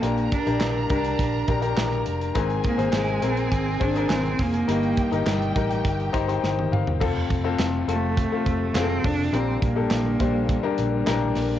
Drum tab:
CC |----------------|----------------|----------------|x---------------|
HH |xxxx--xxx-xx-xxx|xxxx-xxxx-xx-xox|xxxx-xxxxxxx----|--x-x-x-x-x-x-o-|
CP |----x-------x---|----x-------x---|----x-----------|----x-------x---|
SD |----o-------o---|----o-------o-o-|----o-------o---|----o-------o---|
T1 |----------------|----------------|-------------o--|----------------|
T2 |----------------|----------------|--------------o-|----------------|
FT |----------------|----------------|---------------o|----------------|
BD |--o---o-o-o-----|o-o-----o-o---o-|--o---o-o-o-----|o-o-----o-o---o-|

CC |----------------|
HH |x-x-x-x-x-x-x-o-|
CP |----x-------x---|
SD |----o-------o-o-|
T1 |----------------|
T2 |----------------|
FT |----------------|
BD |--o---o-o-------|